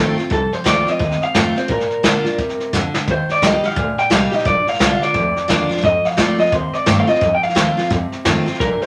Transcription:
Already playing: A#1 C3 D#3 A3 C4 F4 A4
0.18 C4 F4, muted upright bass stroke, snare
0.30 C2 F2 A4, kick, snare
0.52 C5, muted upright bass stroke, snare
0.64 D2 D#3 A3 C4 F4 D5, kick, snare, hi-hat pedal
0.87 C4 F4 D#5, muted upright bass stroke, snare
0.99 D#2 C3, kick, snare
1.11 snare
1.22 F5, muted upright bass stroke, snare
1.34 F2 D#3 A3 C4 F4, kick, snare, hi-hat pedal
1.56 C4 F4 C5, snare
1.68 A#2 A#4, kick, snare
1.80 snare
1.90 muted upright bass stroke, snare
2.03 A2 D3 A#3 D4 F4, kick, snare, hi-hat pedal
2.24 D4 F4, muted upright bass stroke, snare
2.38 G2 C3, kick, snare
2.49 snare
2.60 muted upright bass stroke, snare
2.73 F2 D3, kick, snare, hi-hat pedal
2.94 snare
3.07 D#2 D#3 C5, kick, snare
3.29 D5, muted upright bass stroke, snare
3.36 snare
3.42 C#2 G3 A#3 D#4 G4 D#5, kick, snare, hi-hat pedal
3.64 D#4 G4 F5, snare
3.70 snare
3.76 D2 A#2, kick, snare
3.98 G5, muted upright bass stroke, snare
4.10 C2 G3 A#3 D#4 G4 F5, kick, snare, hi-hat pedal
4.32 D#4 G4 D#5, muted upright bass stroke, snare
4.39 snare
4.45 A#1 A#2 D5, kick, snare
4.67 F5, muted upright bass stroke, snare
4.74 snare
4.79 C2 D3 A#3 D4 F4, kick, snare, hi-hat pedal
4.93 F5
5.02 D5, snare
5.14 D2 F2, kick, snare
5.36 muted upright bass stroke, snare
5.48 D#2 D3 A#3 D4 F4, kick, snare, hi-hat pedal
5.69 D4 F4, snare
5.77 snare
5.83 F2 D#5, kick, snare
6.05 F5, muted upright bass stroke, snare
6.11 snare
6.17 D#3 A3 C4 F4 D5, kick, snare, hi-hat pedal
6.38 C4 F4 D#5, muted upright bass stroke, snare
6.46 snare
6.52 D#2 C3 C5, kick, snare
6.74 D5, snare
6.86 G2 D#3 A3 C4 F4, kick, snare, hi-hat pedal
7.00 F5
7.07 C4 F4 D#5, snare
7.15 snare
7.21 F2, kick, snare
7.35 G5
7.43 F5, muted upright bass stroke, snare
7.49 snare
7.55 D#2 D#3 A3 C4 F4, kick, snare, hi-hat pedal
7.77 C4 F4, muted upright bass stroke, snare
7.84 snare
7.90 F2 C3, kick, snare
8.12 muted upright bass stroke, snare
8.25 F2 D#3 A3 C4 F4, kick, snare, hi-hat pedal
8.46 C4 F4, snare
8.54 snare
8.60 A#1 A#2 A#4, kick, snare
8.82 C5, muted upright bass stroke, snare

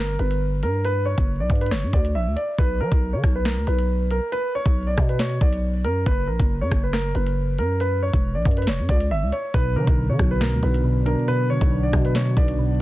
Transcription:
Already playing: G1 A#4
0.19 G1 B4, closed hi-hat
0.31 closed hi-hat
0.63 G2 A#4, closed hi-hat
0.85 B4, closed hi-hat
1.05 C#5
1.18 F#1, kick, closed hi-hat
1.40 B1 D5
1.50 G2, kick, closed hi-hat
1.56 closed hi-hat
1.61 B4, closed hi-hat
1.66 closed hi-hat
1.71 F#1 C#5, snare
1.83 G2
1.93 D2 D5, kick, closed hi-hat
2.05 closed hi-hat
2.15 A#1 E5
2.26 D2
2.36 D5, closed hi-hat
2.58 B1 B4, kick, closed hi-hat
2.80 F#3 A#4
2.92 B1, kick, closed hi-hat
3.13 D3 C#5
3.24 B1, kick, cross-stick, closed hi-hat
3.35 B4
3.45 A#4, snare, closed hi-hat
3.57 D2
3.67 B1 B4, closed hi-hat
3.79 closed hi-hat
4.11 A#4, closed hi-hat
4.32 B4, closed hi-hat
4.55 C#5
4.66 B1, kick, closed hi-hat
4.87 D5
4.98 B2, kick, cross-stick, closed hi-hat
5.09 B4, closed hi-hat
5.19 C#5, snare
5.41 B1 D5, kick, closed hi-hat
5.53 closed hi-hat
5.84 F#2 A#4, closed hi-hat
6.06 F#1 B4, kick, closed hi-hat
6.27 A#1 A#4
6.40 F#1, kick, closed hi-hat
6.61 F#2 C#5
6.71 F#1, kick, cross-stick, closed hi-hat
6.83 B4
6.93 A#4, snare, closed hi-hat
7.14 F#1 B4, closed hi-hat
7.27 closed hi-hat
7.58 F#2 A#4, closed hi-hat
7.80 B4, closed hi-hat
8.03 C#5
8.13 E1, kick, closed hi-hat
8.35 A#1 D5
8.45 F#2, kick, closed hi-hat
8.51 closed hi-hat
8.57 B4, closed hi-hat
8.62 closed hi-hat
8.67 E1 C#5, snare
8.79 F#2
8.89 C#2 D5, kick, closed hi-hat
9.00 closed hi-hat
9.11 G1 E5
9.22 C#2
9.32 C#5, closed hi-hat
9.54 B1 B2 B3 D4 F#4 B4, kick, closed hi-hat
9.76 D3 F#3 A#4
9.87 B1, kick, closed hi-hat
9.98 B2
10.09 D3 C#5
10.19 B1 F#3, kick, cross-stick, closed hi-hat
10.31 B4
10.40 B2 A#4, snare, closed hi-hat
10.53 D2
10.63 B1 B3 B4, closed hi-hat
10.74 closed hi-hat
10.84 B2
11.06 D4 A#4, closed hi-hat
11.28 B2 B4, closed hi-hat
11.50 D3 C#5
11.61 B1, kick, closed hi-hat
11.72 B2
11.83 D5
11.93 B2 F#3, kick, cross-stick, closed hi-hat
12.05 B4, closed hi-hat
12.15 B2 C#5, snare
12.37 B1 B3 D5, kick, closed hi-hat
12.48 closed hi-hat
12.59 B2

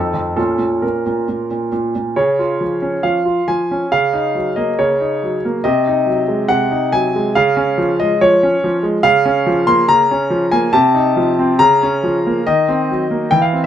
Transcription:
Already playing: F2 C4 D#4 A4
0.14 F2
0.36 A#2 C#4 F4 A4
0.59 A#2
0.82 A#2 A#4
1.06 A#2
1.29 A#2
1.51 A#2
1.72 A#2
1.95 A#2
2.16 C#3 C#5
2.39 F4
2.61 F3
2.82 C#4
3.03 F3 F5
3.25 F4
3.48 F3 G#5
3.71 C#4
3.92 C#3 F5
4.13 D#4
4.35 F#3
4.56 A#3 D#5
4.79 C#3 C#5
5.00 D#4
5.23 F#3
5.45 A#3
5.64 C3 D#5
5.87 D#4
6.06 F#3
6.28 G#3
6.49 C3 F#5
6.71 D#4
6.92 F#3 G#5
7.15 G#3
7.35 C#3 F5
7.57 C#4
7.78 F3
8.00 G#3 D#5
8.21 F3 C#5
8.43 C#4
8.64 F3
8.83 G#3
9.03 C#3 F5
9.26 C#4
9.46 F3
9.67 A#3 C6
9.88 C#3 A#5
10.11 C#4
10.30 F3
10.52 A#3 G#5
10.73 C3 A5
10.95 D#4
11.16 F3
11.39 C4
11.59 C#3 A#5
11.83 C#4
12.03 F3
12.27 A#3
12.47 D#3 D#5
12.69 C4
12.91 F#3
13.11 A#3
13.31 E3 G5
13.42 F5
13.53 C4

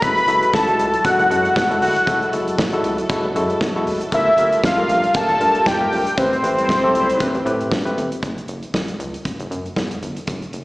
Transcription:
0.02 F#1 F#3 G#3 E4 F#4 A4 B5, kick, closed hi-hat
0.17 closed hi-hat
0.28 F#1 G#3 E4 F#4 A4, closed hi-hat
0.43 closed hi-hat
0.53 A1 A5, kick, snare
0.67 G#3 E4 F#4 A4, closed hi-hat
0.79 C#2, closed hi-hat
0.94 closed hi-hat
1.04 G#3 E4 F#4 A4 F#5, kick, closed hi-hat
1.19 F#1, closed hi-hat
1.30 F#2 G#3 E4 F#4 A4, closed hi-hat
1.45 closed hi-hat
1.56 E2, kick, snare
1.70 G#3 E4 F#4 A4, closed hi-hat
1.81 G1 F#5, open hi-hat
1.96 closed hi-hat
2.07 F#1 G#3 E4 F#4 A4, kick, closed hi-hat
2.22 closed hi-hat
2.33 F#1 G#3 E4 F#4 A4, closed hi-hat
2.48 closed hi-hat
2.58 A1, kick, snare
2.72 G#3 E4 F#4 A4, closed hi-hat
2.84 C#2, closed hi-hat
2.98 closed hi-hat
3.09 G#3 E4 F#4 A4, kick, closed hi-hat
3.24 F#1
3.35 F#2 G#3 E4 F#4 A4, closed hi-hat
3.50 closed hi-hat
3.61 E2, kick, snare
3.75 G#3 E4 F#4 A4
3.87 G#1, open hi-hat
4.01 closed hi-hat
4.12 G1 G3 A3 F4 G4 A#4 E5, kick, closed hi-hat
4.38 G1 A3 F4 G4 A#4, closed hi-hat
4.53 closed hi-hat
4.63 A1 F5, kick, snare
4.78 A3 F4 G4 A#4
4.89 A#1, closed hi-hat
5.04 closed hi-hat
5.14 A3 F4 G4 A#4 A5, kick, closed hi-hat
5.29 G1, closed hi-hat
5.40 G2 A3 F4 G4 A#4, closed hi-hat
5.55 closed hi-hat
5.66 F2 G5, kick, snare
5.80 A3 F4 G4 A#4
5.92 A#1, open hi-hat
6.07 closed hi-hat
6.17 A1 A3 C4 G4 B4 C5, kick, closed hi-hat
6.33 closed hi-hat
6.43 A1 A3 C4 G4 B4, closed hi-hat
6.57 G3 E4 C5, closed hi-hat
6.69 B1, kick, snare
6.83 A3 C4 G4 A4
6.94 C#2 G3 E4 C5, closed hi-hat
7.10 closed hi-hat
7.20 A3 C4 G4 B4, kick, closed hi-hat
7.34 A1, closed hi-hat
7.45 A2 A3 C4 G4 B4, closed hi-hat
7.61 closed hi-hat
7.71 G2, kick, snare
7.85 A3 C4 G4 B4, closed hi-hat
7.97 G1, closed hi-hat
8.12 closed hi-hat
8.23 F#1, kick, closed hi-hat
8.38 closed hi-hat
8.48 F#1, closed hi-hat
8.63 closed hi-hat
8.74 A1, kick, snare
8.88 closed hi-hat
8.99 C#2, closed hi-hat
9.14 closed hi-hat
9.25 kick, closed hi-hat
9.40 F#1, closed hi-hat
9.51 F#2, closed hi-hat
9.66 closed hi-hat
9.76 E2, kick, snare
9.91 closed hi-hat
10.02 G1, closed hi-hat
10.17 closed hi-hat
10.27 F#1, kick, closed hi-hat
10.42 closed hi-hat
10.53 F#1, closed hi-hat

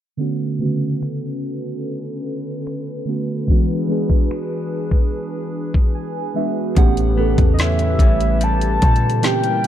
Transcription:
0.17 D3 A3 B3 C#4 F#4 A4 B4
0.59 C#3 A3 B3 C#4 F#4
0.65 D3
1.03 finger snap
2.67 finger snap
3.05 D3 A3 B3 C#4 F#4
3.47 E3 G#3 B3 D4 F#4 G#4, kick
3.87 E3 G#3 B3 D4 G#4
4.10 kick
4.31 finger snap
4.91 kick
5.74 kick
5.95 G#5
6.34 E3 G#3 B3 D4 F#4 E5
6.75 A1 A2 C#3 E3 A3 B3 C#4 G4 B4 F#5, kick, closed hi-hat
6.97 closed hi-hat
7.16 E3 A3 B3 C#4 A4
7.38 E2, kick, closed hi-hat
7.54 D#5
7.59 C#4 E5, snare, closed hi-hat
7.79 closed hi-hat
7.99 A1 G3 C#4, kick, closed hi-hat
8.21 closed hi-hat
8.41 G3 A5, closed hi-hat
8.61 closed hi-hat
8.82 A#2 G3, kick, closed hi-hat
8.96 closed hi-hat
9.10 closed hi-hat
9.21 A#2 E3 G3 A#3 C4 C#4 E4 G4 A#4 G5, snare, closed hi-hat
9.44 closed hi-hat

